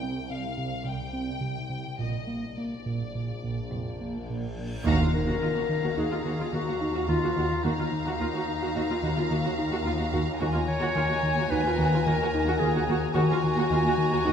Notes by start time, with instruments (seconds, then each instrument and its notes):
Already playing: synth drone C2, violin section G5
0.03 analog synth bass C3
0.30 analog synth bass C3, violin section F5
0.57 analog synth bass C3
0.85 double bass section C2, analog synth bass C3, cello section C3, violin section G5
1.13 analog synth bass C4
1.40 analog synth bass C3
1.70 analog synth bass C3
1.99 double bass section A#1, synth drone A#1, cello section A#2, analog synth bass A#2, violin section D#5, reverse cymbal
2.27 analog synth bass A#3
2.56 analog synth bass A#3, violin section D5
2.86 analog synth bass A#2
3.15 analog synth bass A#2
3.44 analog synth bass A#2
3.72 double bass section F1, cello section F2, analog synth bass A#2
4.01 analog synth bass A#3
4.30 analog synth bass A#2
4.59 analog synth bass A#2
4.86 cello section D#2, double bass section D#2, synth drone D#2, analog synth bass D#3, viola section F#4, violin section F5 A#5, impact
5.00 cello section D#2, viola section F4
5.14 analog synth bass D#3, clarinet A#4
5.28 cello section D#2, viola section F#4
5.42 cello section D#2, double bass section D#2, analog synth bass D#3, viola section F4
5.56 cello section D#2, viola section F#4
5.69 analog synth bass D#3
5.83 cello section D#2, viola section F#4
5.96 cello section D#2, double bass section D#2, analog synth bass D#4, viola section F#4, clarinet G#4
6.11 cello section D#2, viola section F4
6.25 double bass section D#2, cello section D#2, analog synth bass D#3, viola section F#4
6.39 cello section D#2, viola section F4
6.53 cello section D#2, double bass section D#2, analog synth bass D#3, viola section F#4, clarinet F#4
6.67 cello section D#2, viola section F#4
6.81 analog synth bass D#4
6.95 cello section D#2, viola section F#4
7.08 cello section D#2, double bass section D#2, analog synth bass D#3, viola section F4, clarinet F4
7.22 cello section D#2, viola section F#4
7.36 double bass section D#2, cello section D#2, analog synth bass D#3, viola section F#4
7.64 cello section D#2, synth drone D#2, double bass section D#2, analog synth bass D#3, clarinet D#4, viola section F#4, violin section F5 A#5
7.78 cello section D#2, viola section F4
7.92 analog synth bass D#3
8.05 cello section D#2, viola section F#4
8.20 double bass section D#2, cello section D#2, analog synth bass D#3, viola section F4
8.34 cello section D#2, viola section F#4
8.48 analog synth bass D#3
8.62 cello section D#2, viola section F#4
8.75 double bass section D#2, cello section D#2, analog synth bass D#4, viola section F#4
8.89 cello section D#2, viola section F4
9.03 double bass section D#2, cello section D#2, analog synth bass D#3, viola section F#4
9.17 cello section D#2, viola section F4
9.30 double bass section D#2, cello section D#2, analog synth bass D#3, viola section F#4
9.45 cello section D#2, viola section F#4
9.58 analog synth bass D#4
9.72 cello section D#2, viola section F#4
9.85 cello section D#2, double bass section D#2, analog synth bass D#3, viola section F4
9.99 cello section D#2, viola section F#4
10.12 cello section D#2, double bass section D#2, analog synth bass D#3, viola section F#4
10.40 synth drone D#2, double bass section D#2, cello section D#2, analog synth bass D#3, viola section F#4, violin section G#5 A#5
10.53 cello section D#2, viola section F4
10.67 analog synth bass D#3, clarinet C#5
10.80 cello section D#2, viola section F#4
10.95 cello section D#2, double bass section D#2, analog synth bass D#3, viola section F4
11.09 cello section D#2, viola section F#4
11.23 analog synth bass D#3
11.36 cello section D#2, viola section F#4
11.49 cello section D#2, double bass section D#2, analog synth bass D#4, viola section F#4, clarinet B4
11.63 cello section D#2, viola section F4
11.77 cello section D#2, double bass section D#2, analog synth bass D#3, viola section F#4
11.91 cello section D#2, viola section F4
12.06 cello section D#2, double bass section D#2, analog synth bass D#3, viola section F#4, clarinet A#4
12.19 cello section D#2, viola section F#4
12.34 analog synth bass D#4
12.46 cello section D#2, viola section F#4
12.60 cello section D#2, double bass section D#2, analog synth bass D#3, viola section F4, clarinet G#4
12.75 cello section D#2, viola section F#4
12.88 cello section D#2, double bass section D#2, analog synth bass D#3, viola section F#4
13.14 cello section D#2, double bass section D#2, synth drone D#2, analog synth bass D#3, clarinet F#4, viola section F#4, violin section G#5 A#5
13.30 cello section D#2, viola section F4
13.44 analog synth bass D#3
13.57 cello section D#2, viola section F#4
13.71 cello section D#2, double bass section D#2, analog synth bass D#3, viola section F4
13.85 cello section D#2, viola section F#4
13.98 analog synth bass D#3
14.12 cello section D#2, viola section F#4
14.25 cello section D#2, double bass section D#2, analog synth bass D#4, viola section F#4